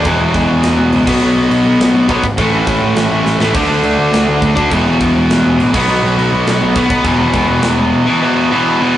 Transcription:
0.04 0.18 E1 loud
0.04 1.06 E2 medium
0.04 1.05 B2 medium
0.04 kick loud
0.04 crash medium
0.08 1.07 E3 loud
0.20 0.32 E1 medium
0.34 0.47 E1 medium
0.34 kick medium
0.34 crash medium
0.49 0.62 E1 medium
0.63 0.76 E1 medium
0.63 snare loud
0.63 crash medium
0.79 0.91 E1 medium
0.93 1.05 C#2 medium
0.93 crash medium
1.06 1.20 B1 medium
1.06 2.07 B2 loud
1.06 2.09 F#3 loud
1.06 2.09 B3 loud
1.06 kick loud
1.06 crash loud
1.22 1.35 B1 loud
1.22 crash medium
1.36 1.49 B1 medium
1.50 1.63 B1 medium
1.50 crash medium
1.65 1.78 B1 medium
1.80 1.93 B1 medium
1.80 snare loud
1.80 crash medium
1.95 2.08 B1 medium
2.08 2.22 B1 medium
2.08 2.23 B2 medium
2.08 2.23 F#3 medium
2.08 2.24 B3 medium
2.08 kick medium
2.08 crash medium
2.23 2.36 G#1 medium
2.23 kick medium
2.38 2.51 A1 medium
2.38 3.39 A2 medium
2.38 3.40 E3 medium
2.38 3.40 A3 loud
2.38 kick loud
2.38 crash medium
2.52 2.66 A1 medium
2.67 2.80 A1 medium
2.67 kick medium
2.67 crash medium
2.82 2.95 A1 medium
2.95 3.09 A1 medium
2.95 snare loud
2.95 crash medium
3.09 3.23 A1 medium
3.24 3.38 A1 medium
3.24 snare medium
3.38 3.52 A1 medium
3.38 3.54 A3 medium
3.38 snare loud
3.42 3.53 A2 medium
3.42 3.55 E3 medium
3.53 3.68 D2 medium
3.53 4.55 D3 medium
3.53 4.56 A3 loud
3.53 4.54 D4 medium
3.53 kick loud
3.53 crash loud
3.53 crash medium
3.69 3.82 D2 loud
3.83 3.97 D2 medium
3.83 crash medium
3.98 4.11 D2 medium
4.12 4.26 D2 medium
4.12 snare loud
4.12 crash medium
4.28 4.41 D2 medium
4.42 4.55 D2 medium
4.42 kick medium
4.42 crash medium
4.55 4.70 D2 medium
4.55 4.72 D3 medium
4.55 4.71 A3 medium
4.55 4.70 D4 medium
4.55 kick medium
4.70 4.84 E1 medium
4.70 5.72 E2 medium
4.70 5.73 B2 medium
4.70 5.74 E3 loud
4.70 kick loud
4.70 crash medium
4.86 4.99 E1 medium
5.00 5.13 E1 medium
5.00 kick medium
5.00 crash medium
5.15 5.28 E1 medium
5.30 5.43 E1 loud
5.30 snare loud
5.30 crash medium
5.44 5.57 E1 medium
5.58 5.72 A1 medium
5.58 crash medium
5.73 5.87 B1 medium
5.73 6.73 B2 medium
5.73 6.75 F#3 loud
5.73 6.77 B3 loud
5.73 kick loud
5.73 crash loud
5.88 6.01 B1 loud
5.88 crash medium
6.03 6.16 B1 medium
6.18 6.31 B1 loud
6.18 crash medium
6.33 6.45 B1 medium
6.46 6.59 B1 loud
6.46 snare loud
6.46 crash medium
6.61 6.74 B1 medium
6.74 6.89 B1 loud
6.74 6.89 B2 medium
6.74 6.89 F#3 medium
6.74 8.98 B3 medium
6.74 kick medium
6.74 crash medium
6.90 7.03 B1 medium
6.90 kick medium
7.04 7.18 E1 medium
7.04 8.05 E2 medium
7.04 8.06 B2 medium
7.04 8.05 E3 medium
7.04 kick loud
7.04 crash medium
7.19 7.32 E1 medium
7.33 7.46 E1 medium
7.33 kick medium
7.33 crash medium
7.48 7.61 E1 medium
7.61 7.75 E1 medium
7.61 snare loud
7.61 crash medium
7.77 7.91 E1 medium
8.06 8.20 E2 medium
8.06 8.21 B2 medium
8.06 8.20 E3 medium
8.22 8.51 E2 loud
8.22 8.51 B2 medium
8.22 8.51 E3 loud
8.51 8.79 E2 medium
8.51 8.80 B2 medium
8.51 8.81 E3 loud
8.80 8.98 E2 loud
8.80 8.98 B2 loud
8.80 8.98 E3 loud

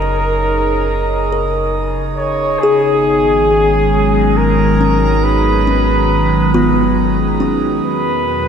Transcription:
0.00 2.58 F#1 medium
0.00 2.63 C#3 medium
0.00 0.59 A#3 medium
0.00 4.54 D#4 medium
0.00 4.72 G#4 medium
0.00 1.75 A#4 loud
0.00 1.31 A#4 medium
0.00 4.09 C#5 medium
0.00 2.66 D#5 medium
0.00 2.62 D#6 medium
1.32 2.81 A#4 medium
2.17 2.61 C#5 loud
2.59 7.81 G#1 medium
2.59 8.48 B3 medium
2.59 4.39 G#4 loud
2.59 6.68 G#4 medium
2.59 8.48 D#6 medium
2.64 7.85 D#3 medium
2.64 8.48 D#3 medium
2.89 7.86 F#3 medium
3.15 7.85 G#3 medium
3.25 7.85 C#4 medium
3.81 7.85 A#5 medium
4.37 5.25 A#4 loud
4.81 5.66 C#4 medium
5.24 7.41 B4 medium
5.67 6.72 C#4 medium
6.54 8.02 B3 medium
6.54 7.59 F4 medium
7.40 8.48 C#4 medium
7.85 8.48 E2 medium
7.85 8.48 B2 medium
7.85 8.48 B4 loud
8.12 8.48 G5 medium

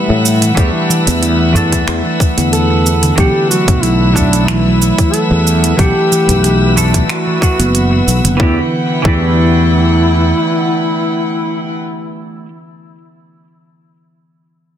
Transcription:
0.00 0.52 E3 medium
0.00 0.53 A3 medium
0.00 0.54 D4 medium
0.00 0.54 A4 medium
0.00 3.14 B4 medium
0.00 3.14 E5 medium
0.00 8.36 F#5 medium
0.00 3.14 E6 medium
0.09 0.50 A2 loud
0.09 0.40 E3 medium
0.26 cabasa medium
0.42 0.56 E3 medium
0.42 closed hi-hat medium
0.42 cabasa soft
0.55 0.70 E2 medium
0.55 1.50 E3 medium
0.55 0.88 E3 medium
0.55 1.51 A3 medium
0.55 1.52 D4 medium
0.55 kick loud
0.55 closed hi-hat soft
0.55 cabasa soft
0.59 1.52 G4 medium
0.90 1.21 E3 loud
0.90 cabasa medium
1.07 1.81 E2 loud
1.07 closed hi-hat medium
1.07 cabasa soft
1.22 1.39 E3 medium
1.22 closed hi-hat soft
1.22 cabasa soft
1.53 3.13 E3 medium
1.53 1.72 E3 medium
1.53 3.14 A3 medium
1.53 3.15 D4 medium
1.53 3.15 A4 medium
1.53 udu medium
1.53 cabasa medium
1.72 kick medium
1.72 closed hi-hat medium
1.72 cabasa soft
1.88 2.00 E2 loud
1.88 finger snap medium
1.88 closed hi-hat soft
1.88 cabasa soft
2.05 2.20 E3 medium
2.20 kick medium
2.20 cabasa medium
2.37 3.11 E2 medium
2.37 2.69 D3 medium
2.37 closed hi-hat medium
2.37 cabasa soft
2.53 3.14 A4 loud
2.53 closed hi-hat soft
2.53 cabasa soft
2.70 3.01 B3 medium
2.86 cabasa medium
3.03 3.12 D3 loud
3.03 closed hi-hat medium
3.03 cabasa soft
3.16 3.30 B1 loud
3.16 4.11 E3 medium
3.16 3.49 E3 medium
3.16 4.12 A3 medium
3.16 4.13 D4 medium
3.16 3.48 G4 loud
3.16 8.36 B4 medium
3.16 8.36 E5 medium
3.16 8.36 E6 medium
3.16 kick loud
3.16 closed hi-hat soft
3.16 cabasa soft
3.20 4.13 F#5 medium
3.50 3.82 F#3 medium
3.50 3.84 F#4 loud
3.50 cabasa medium
3.68 4.90 B1 loud
3.68 kick loud
3.68 closed hi-hat medium
3.68 udu medium
3.68 cabasa soft
3.83 4.00 F#3 medium
3.83 4.16 E4 loud
3.83 closed hi-hat soft
3.83 cabasa soft
4.13 5.74 E3 medium
4.13 5.75 A3 medium
4.13 4.49 D4 medium
4.13 5.75 D4 medium
4.13 4.47 E4 loud
4.13 kick medium
4.13 udu medium
4.13 cabasa medium
4.17 5.76 A4 medium
4.33 closed hi-hat medium
4.33 cabasa soft
4.48 4.64 E3 medium
4.48 5.14 E4 loud
4.48 finger snap medium
4.48 closed hi-hat soft
4.48 cabasa soft
4.66 4.80 F#3 loud
4.82 cabasa medium
4.98 5.29 E3 loud
4.98 kick loud
4.98 closed hi-hat medium
4.98 cabasa soft
5.13 5.77 A4 loud
5.13 closed hi-hat soft
5.13 cabasa soft
5.31 5.72 E2 loud
5.31 5.62 E3 medium
5.47 cabasa medium
5.64 5.78 E3 medium
5.64 closed hi-hat medium
5.64 cabasa soft
5.77 5.91 B1 loud
5.77 6.72 E3 medium
5.77 6.10 E3 medium
5.77 6.73 A3 medium
5.77 6.73 D4 medium
5.77 6.78 G4 loud
5.77 kick loud
5.77 closed hi-hat soft
5.77 cabasa soft
5.81 6.74 F#5 medium
6.11 6.43 E3 medium
6.11 cabasa medium
6.28 7.02 B1 loud
6.28 closed hi-hat medium
6.28 udu medium
6.28 cabasa soft
6.44 6.61 E3 medium
6.44 closed hi-hat soft
6.44 cabasa soft
6.76 7.38 E3 medium
6.76 6.93 E3 medium
6.76 7.39 A3 medium
6.76 7.39 D4 medium
6.76 7.39 A4 medium
6.76 udu medium
6.76 cabasa medium
6.94 kick medium
6.94 closed hi-hat medium
6.94 cabasa soft
7.08 7.25 E3 medium
7.08 8.03 F#4 medium
7.08 finger snap medium
7.08 closed hi-hat soft
7.08 cabasa soft
7.27 7.41 E3 medium
7.41 7.68 E3 medium
7.41 7.68 A3 medium
7.41 7.69 D4 medium
7.41 7.69 F#4 medium
7.41 kick loud
7.41 cabasa medium
7.59 8.00 F#1 medium
7.59 7.74 B3 loud
7.59 closed hi-hat medium
7.59 cabasa soft
7.75 closed hi-hat soft
7.75 cabasa soft
7.92 8.01 B3 medium
8.07 8.19 B1 medium
8.07 cabasa medium
8.24 8.35 F#1 medium
8.24 8.39 D3 medium
8.24 closed hi-hat medium
8.24 cabasa soft
8.37 8.59 E2 loud
8.37 8.57 E3 medium
8.37 8.59 E3 loud
8.37 8.58 A3 medium
8.37 8.59 D4 medium
8.37 8.58 E4 medium
8.37 11.77 E4 medium
8.37 11.77 B4 medium
8.37 11.77 F#5 medium
8.37 11.77 G5 medium
8.37 kick loud
8.43 8.60 G4 medium
9.02 10.31 E2 loud
9.02 12.45 E3 medium
9.02 9.24 E3 loud
9.02 12.46 A3 medium
9.02 11.76 E4 loud
9.02 kick loud
9.06 12.47 D4 medium
9.06 12.48 G4 medium

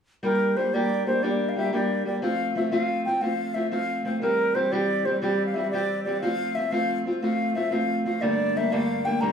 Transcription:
0.23 0.56 G3 medium
0.23 0.56 A#3 medium
0.23 0.57 D4 medium
0.23 0.58 G4 medium
0.23 0.58 A#4 medium
0.57 0.73 G3 medium
0.57 0.73 A#3 medium
0.57 0.73 D4 medium
0.57 0.74 G4 medium
0.57 0.75 C5 medium
0.74 1.05 G3 medium
0.74 1.06 A#3 medium
0.74 1.07 D4 medium
0.74 1.08 G4 medium
0.74 1.06 D5 medium
1.06 1.22 G3 medium
1.06 1.22 A#3 medium
1.06 1.23 D4 medium
1.06 1.23 G4 medium
1.06 1.24 C5 medium
1.23 1.55 G3 medium
1.23 1.56 A#3 medium
1.23 1.57 D4 medium
1.23 1.57 G4 medium
1.23 1.50 D5 medium
1.49 1.57 F5 medium
1.56 1.71 G3 medium
1.56 1.72 A#3 medium
1.56 1.73 D4 medium
1.56 1.73 G4 medium
1.56 1.72 E5 medium
1.73 2.04 G3 medium
1.73 2.05 A#3 medium
1.73 2.06 D4 medium
1.73 2.06 G4 medium
1.73 2.05 D5 medium
2.05 2.22 G3 soft
2.05 2.22 A#3 medium
2.05 2.23 D4 soft
2.05 2.23 G4 medium
2.05 2.22 D5 medium
2.22 2.54 F3 medium
2.22 2.56 A3 medium
2.22 2.56 C4 medium
2.22 2.57 F4 medium
2.22 2.54 F5 medium
2.55 2.70 F3 medium
2.55 2.71 A3 medium
2.55 2.71 C4 medium
2.55 2.72 F4 medium
2.55 2.70 E5 medium
2.71 3.05 F3 medium
2.71 3.07 A3 medium
2.71 3.07 C4 medium
2.71 3.07 F4 medium
2.71 3.03 F5 medium
3.05 3.21 F3 soft
3.05 3.23 A3 medium
3.05 3.21 C4 medium
3.05 3.22 F4 medium
3.05 3.23 G5 medium
3.22 3.54 F3 medium
3.22 3.55 A3 medium
3.22 3.55 C4 medium
3.22 3.56 F4 medium
3.22 3.56 F5 medium
3.54 3.70 F3 soft
3.54 3.72 A3 medium
3.54 3.71 C4 medium
3.54 3.72 F4 medium
3.54 3.70 E5 medium
3.71 4.04 F3 medium
3.71 4.05 A3 medium
3.71 4.05 C4 medium
3.71 4.06 F4 medium
3.71 4.03 F5 medium
4.05 4.21 F3 medium
4.05 4.23 A3 medium
4.05 4.22 C4 soft
4.05 4.23 F4 medium
4.05 4.21 F5 medium
4.22 4.53 E3 medium
4.22 4.54 G3 medium
4.22 4.56 C4 medium
4.22 4.56 G4 medium
4.22 4.56 A#4 medium
4.54 4.71 E3 medium
4.54 4.71 G3 medium
4.54 4.72 C4 medium
4.54 4.72 G4 medium
4.54 4.74 C5 medium
4.72 5.04 E3 medium
4.72 5.05 G3 medium
4.72 5.07 C4 medium
4.72 5.06 G4 medium
4.72 5.07 D5 medium
5.05 5.20 E3 soft
5.05 5.21 G3 medium
5.05 5.21 C4 medium
5.05 5.22 G4 medium
5.05 5.21 C5 medium
5.21 5.54 E3 medium
5.21 5.55 G3 medium
5.21 5.56 C4 medium
5.21 5.56 G4 medium
5.21 5.46 D5 medium
5.46 5.56 F5 medium
5.54 5.72 E3 medium
5.54 5.72 G3 medium
5.54 5.72 C4 medium
5.54 5.73 G4 medium
5.54 5.70 E5 medium
5.71 6.05 E3 medium
5.71 6.06 G3 medium
5.71 6.08 C4 medium
5.71 6.07 G4 medium
5.71 6.03 D5 medium
6.04 6.22 E3 medium
6.04 6.23 G3 soft
6.04 6.22 C4 medium
6.04 6.20 D5 medium
6.09 6.24 G4 medium
6.21 6.55 F3 medium
6.21 6.58 A3 medium
6.21 6.56 C4 medium
6.21 6.57 F4 medium
6.21 6.57 F5 loud
6.55 6.71 F3 medium
6.55 6.72 A3 medium
6.55 6.71 C4 medium
6.55 6.73 F4 medium
6.55 6.73 E5 medium
6.72 7.04 F3 medium
6.72 7.07 A3 medium
6.72 7.05 C4 medium
6.72 7.07 F4 medium
6.72 6.99 F5 medium
7.05 7.21 F3 soft
7.05 7.22 A3 medium
7.05 7.22 C4 medium
7.05 7.23 F4 medium
7.21 7.54 F3 medium
7.21 7.56 A3 medium
7.21 7.54 C4 medium
7.21 7.56 F4 medium
7.21 7.53 F5 medium
7.55 7.70 F3 medium
7.55 7.71 A3 medium
7.55 7.71 C4 medium
7.55 7.71 F4 medium
7.55 7.74 E5 medium
7.71 8.04 F3 medium
7.71 8.07 A3 medium
7.71 8.05 C4 medium
7.71 8.06 F4 medium
7.71 8.05 F5 medium
8.05 8.21 F3 soft
8.05 8.21 A3 medium
8.05 8.22 C4 medium
8.05 8.23 F4 medium
8.05 8.23 F5 medium
8.22 8.56 G2 medium
8.22 8.71 D3 medium
8.22 8.55 G3 medium
8.22 8.56 A3 medium
8.22 8.55 A#3 medium
8.22 8.57 D4 medium
8.22 8.59 D5 loud
8.55 8.72 G3 medium
8.55 8.72 A3 medium
8.55 8.72 A#3 medium
8.55 8.72 D4 medium
8.55 8.74 E5 medium
8.72 9.06 G2 medium
8.72 9.21 D3 medium
8.72 9.05 G3 medium
8.72 9.06 A3 medium
8.72 9.05 A#3 medium
8.72 9.07 D4 medium
8.72 9.07 F5 loud
9.05 9.21 G3 medium
9.05 9.21 A3 medium
9.05 9.21 A#3 medium
9.05 9.22 D4 medium
9.05 9.22 G5 medium
9.21 9.32 G2 medium
9.21 9.32 D3 medium
9.21 9.32 G3 medium
9.21 9.32 A3 medium
9.21 9.32 A#3 medium
9.21 9.32 D4 medium
9.21 9.32 A#5 medium

